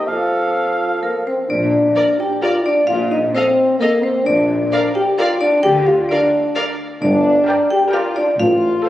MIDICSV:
0, 0, Header, 1, 13, 480
1, 0, Start_track
1, 0, Key_signature, -2, "major"
1, 0, Tempo, 469851
1, 80, Time_signature, 3, 2, 24, 8
1, 2479, Tempo, 459067
1, 9238, End_track
2, 0, Start_track
2, 0, Title_t, "Cor anglais"
2, 0, Program_c, 0, 69
2, 79, Note_on_c, 0, 77, 47
2, 1293, Note_off_c, 0, 77, 0
2, 9238, End_track
3, 0, Start_track
3, 0, Title_t, "Flute section"
3, 0, Program_c, 1, 73
3, 91, Note_on_c, 1, 77, 46
3, 1299, Note_off_c, 1, 77, 0
3, 9238, End_track
4, 0, Start_track
4, 0, Title_t, "Violin section"
4, 0, Program_c, 2, 48
4, 1996, Note_on_c, 2, 74, 50
4, 2078, Note_off_c, 2, 74, 0
4, 2472, Note_on_c, 2, 74, 52
4, 2556, Note_off_c, 2, 74, 0
4, 3448, Note_on_c, 2, 77, 60
4, 3532, Note_off_c, 2, 77, 0
4, 3931, Note_on_c, 2, 77, 50
4, 4015, Note_off_c, 2, 77, 0
4, 4891, Note_on_c, 2, 77, 65
4, 4975, Note_off_c, 2, 77, 0
4, 5375, Note_on_c, 2, 77, 60
4, 5459, Note_off_c, 2, 77, 0
4, 6330, Note_on_c, 2, 77, 73
4, 6414, Note_off_c, 2, 77, 0
4, 6794, Note_on_c, 2, 77, 73
4, 6877, Note_off_c, 2, 77, 0
4, 7763, Note_on_c, 2, 79, 87
4, 8117, Note_off_c, 2, 79, 0
4, 8232, Note_on_c, 2, 79, 83
4, 8592, Note_off_c, 2, 79, 0
4, 9238, End_track
5, 0, Start_track
5, 0, Title_t, "Marimba"
5, 0, Program_c, 3, 12
5, 1050, Note_on_c, 3, 70, 45
5, 1276, Note_off_c, 3, 70, 0
5, 1298, Note_on_c, 3, 72, 49
5, 1518, Note_off_c, 3, 72, 0
5, 1532, Note_on_c, 3, 74, 60
5, 2201, Note_off_c, 3, 74, 0
5, 2248, Note_on_c, 3, 79, 65
5, 2465, Note_off_c, 3, 79, 0
5, 2477, Note_on_c, 3, 77, 55
5, 2702, Note_off_c, 3, 77, 0
5, 2720, Note_on_c, 3, 74, 71
5, 2943, Note_on_c, 3, 77, 78
5, 2944, Note_off_c, 3, 74, 0
5, 3175, Note_off_c, 3, 77, 0
5, 3197, Note_on_c, 3, 75, 60
5, 3424, Note_off_c, 3, 75, 0
5, 3440, Note_on_c, 3, 72, 68
5, 3891, Note_off_c, 3, 72, 0
5, 3922, Note_on_c, 3, 70, 59
5, 4148, Note_off_c, 3, 70, 0
5, 4159, Note_on_c, 3, 72, 63
5, 4387, Note_off_c, 3, 72, 0
5, 4400, Note_on_c, 3, 74, 80
5, 5081, Note_off_c, 3, 74, 0
5, 5119, Note_on_c, 3, 79, 82
5, 5346, Note_off_c, 3, 79, 0
5, 5363, Note_on_c, 3, 77, 70
5, 5587, Note_off_c, 3, 77, 0
5, 5595, Note_on_c, 3, 74, 85
5, 5822, Note_off_c, 3, 74, 0
5, 5829, Note_on_c, 3, 79, 100
5, 6059, Note_off_c, 3, 79, 0
5, 6076, Note_on_c, 3, 77, 68
5, 6302, Note_off_c, 3, 77, 0
5, 6309, Note_on_c, 3, 74, 77
5, 6760, Note_off_c, 3, 74, 0
5, 7280, Note_on_c, 3, 74, 83
5, 7956, Note_off_c, 3, 74, 0
5, 7998, Note_on_c, 3, 79, 92
5, 8221, Note_off_c, 3, 79, 0
5, 8236, Note_on_c, 3, 77, 79
5, 8460, Note_off_c, 3, 77, 0
5, 8474, Note_on_c, 3, 74, 87
5, 8699, Note_off_c, 3, 74, 0
5, 8720, Note_on_c, 3, 77, 84
5, 9238, Note_off_c, 3, 77, 0
5, 9238, End_track
6, 0, Start_track
6, 0, Title_t, "Violin section"
6, 0, Program_c, 4, 48
6, 2000, Note_on_c, 4, 74, 48
6, 2082, Note_off_c, 4, 74, 0
6, 2483, Note_on_c, 4, 74, 51
6, 2567, Note_off_c, 4, 74, 0
6, 3447, Note_on_c, 4, 75, 46
6, 3531, Note_off_c, 4, 75, 0
6, 3926, Note_on_c, 4, 75, 56
6, 4009, Note_off_c, 4, 75, 0
6, 4879, Note_on_c, 4, 74, 54
6, 4963, Note_off_c, 4, 74, 0
6, 5366, Note_on_c, 4, 74, 69
6, 5449, Note_off_c, 4, 74, 0
6, 6339, Note_on_c, 4, 74, 55
6, 6422, Note_off_c, 4, 74, 0
6, 6801, Note_on_c, 4, 74, 69
6, 6885, Note_off_c, 4, 74, 0
6, 7767, Note_on_c, 4, 74, 73
6, 8119, Note_off_c, 4, 74, 0
6, 8247, Note_on_c, 4, 74, 77
6, 8600, Note_off_c, 4, 74, 0
6, 9197, Note_on_c, 4, 72, 67
6, 9238, Note_off_c, 4, 72, 0
6, 9238, End_track
7, 0, Start_track
7, 0, Title_t, "Viola section"
7, 0, Program_c, 5, 48
7, 2010, Note_on_c, 5, 70, 51
7, 2091, Note_off_c, 5, 70, 0
7, 2475, Note_on_c, 5, 70, 50
7, 2558, Note_off_c, 5, 70, 0
7, 3446, Note_on_c, 5, 69, 50
7, 3529, Note_off_c, 5, 69, 0
7, 3928, Note_on_c, 5, 69, 48
7, 4012, Note_off_c, 5, 69, 0
7, 4890, Note_on_c, 5, 70, 61
7, 4974, Note_off_c, 5, 70, 0
7, 5365, Note_on_c, 5, 70, 52
7, 5448, Note_off_c, 5, 70, 0
7, 6324, Note_on_c, 5, 70, 60
7, 6407, Note_off_c, 5, 70, 0
7, 6803, Note_on_c, 5, 70, 58
7, 6887, Note_off_c, 5, 70, 0
7, 7757, Note_on_c, 5, 70, 72
7, 8114, Note_off_c, 5, 70, 0
7, 8232, Note_on_c, 5, 70, 77
7, 8592, Note_off_c, 5, 70, 0
7, 9206, Note_on_c, 5, 69, 71
7, 9238, Note_off_c, 5, 69, 0
7, 9238, End_track
8, 0, Start_track
8, 0, Title_t, "Clarinet"
8, 0, Program_c, 6, 71
8, 75, Note_on_c, 6, 69, 59
8, 1267, Note_off_c, 6, 69, 0
8, 9238, End_track
9, 0, Start_track
9, 0, Title_t, "French horn section"
9, 0, Program_c, 7, 60
9, 82, Note_on_c, 7, 60, 41
9, 85, Note_on_c, 7, 65, 41
9, 1035, Note_off_c, 7, 65, 0
9, 1047, Note_on_c, 7, 58, 54
9, 1053, Note_off_c, 7, 60, 0
9, 1157, Note_off_c, 7, 58, 0
9, 1300, Note_on_c, 7, 60, 58
9, 1406, Note_off_c, 7, 60, 0
9, 1529, Note_on_c, 7, 62, 70
9, 2226, Note_off_c, 7, 62, 0
9, 2245, Note_on_c, 7, 67, 72
9, 2471, Note_on_c, 7, 65, 70
9, 2480, Note_off_c, 7, 67, 0
9, 2706, Note_on_c, 7, 62, 75
9, 2716, Note_off_c, 7, 65, 0
9, 2954, Note_off_c, 7, 62, 0
9, 2958, Note_on_c, 7, 65, 94
9, 3067, Note_off_c, 7, 65, 0
9, 3182, Note_on_c, 7, 63, 75
9, 3262, Note_off_c, 7, 63, 0
9, 3367, Note_on_c, 7, 62, 52
9, 3425, Note_on_c, 7, 60, 85
9, 3441, Note_off_c, 7, 62, 0
9, 3905, Note_on_c, 7, 58, 89
9, 3917, Note_off_c, 7, 60, 0
9, 4144, Note_on_c, 7, 60, 80
9, 4152, Note_off_c, 7, 58, 0
9, 4375, Note_on_c, 7, 62, 94
9, 4396, Note_off_c, 7, 60, 0
9, 5111, Note_off_c, 7, 62, 0
9, 5115, Note_on_c, 7, 67, 93
9, 5225, Note_off_c, 7, 67, 0
9, 5351, Note_on_c, 7, 65, 90
9, 5593, Note_off_c, 7, 65, 0
9, 5597, Note_on_c, 7, 62, 94
9, 5836, Note_off_c, 7, 62, 0
9, 5836, Note_on_c, 7, 67, 113
9, 6075, Note_off_c, 7, 67, 0
9, 6089, Note_on_c, 7, 65, 95
9, 6326, Note_off_c, 7, 65, 0
9, 6334, Note_on_c, 7, 62, 104
9, 6807, Note_off_c, 7, 62, 0
9, 7276, Note_on_c, 7, 62, 111
9, 7954, Note_off_c, 7, 62, 0
9, 8009, Note_on_c, 7, 67, 91
9, 8114, Note_off_c, 7, 67, 0
9, 8236, Note_on_c, 7, 65, 106
9, 8472, Note_off_c, 7, 65, 0
9, 8484, Note_on_c, 7, 62, 87
9, 8591, Note_off_c, 7, 62, 0
9, 8728, Note_on_c, 7, 65, 102
9, 9238, Note_off_c, 7, 65, 0
9, 9238, End_track
10, 0, Start_track
10, 0, Title_t, "Bassoon"
10, 0, Program_c, 8, 70
10, 72, Note_on_c, 8, 53, 55
10, 1265, Note_off_c, 8, 53, 0
10, 9238, End_track
11, 0, Start_track
11, 0, Title_t, "Cello section"
11, 0, Program_c, 10, 48
11, 1542, Note_on_c, 10, 46, 63
11, 1931, Note_off_c, 10, 46, 0
11, 2966, Note_on_c, 10, 46, 71
11, 3365, Note_off_c, 10, 46, 0
11, 4407, Note_on_c, 10, 46, 75
11, 4806, Note_off_c, 10, 46, 0
11, 5843, Note_on_c, 10, 50, 84
11, 6242, Note_off_c, 10, 50, 0
11, 7281, Note_on_c, 10, 43, 94
11, 7660, Note_off_c, 10, 43, 0
11, 8721, Note_on_c, 10, 45, 84
11, 9099, Note_off_c, 10, 45, 0
11, 9238, End_track
12, 0, Start_track
12, 0, Title_t, "Double bass section"
12, 0, Program_c, 11, 48
12, 1532, Note_on_c, 11, 34, 68
12, 1926, Note_off_c, 11, 34, 0
12, 2957, Note_on_c, 11, 34, 76
12, 3360, Note_off_c, 11, 34, 0
12, 4403, Note_on_c, 11, 34, 82
12, 4805, Note_off_c, 11, 34, 0
12, 5841, Note_on_c, 11, 38, 89
12, 6241, Note_off_c, 11, 38, 0
12, 7277, Note_on_c, 11, 31, 100
12, 7657, Note_off_c, 11, 31, 0
12, 8715, Note_on_c, 11, 33, 96
12, 9096, Note_off_c, 11, 33, 0
12, 9238, End_track
13, 0, Start_track
13, 0, Title_t, "Tuba"
13, 0, Program_c, 12, 58
13, 1530, Note_on_c, 12, 34, 59
13, 1926, Note_off_c, 12, 34, 0
13, 2960, Note_on_c, 12, 34, 70
13, 3362, Note_off_c, 12, 34, 0
13, 4407, Note_on_c, 12, 34, 73
13, 4807, Note_off_c, 12, 34, 0
13, 5842, Note_on_c, 12, 38, 77
13, 6242, Note_off_c, 12, 38, 0
13, 7285, Note_on_c, 12, 31, 93
13, 7662, Note_off_c, 12, 31, 0
13, 8722, Note_on_c, 12, 33, 81
13, 9099, Note_off_c, 12, 33, 0
13, 9238, End_track
0, 0, End_of_file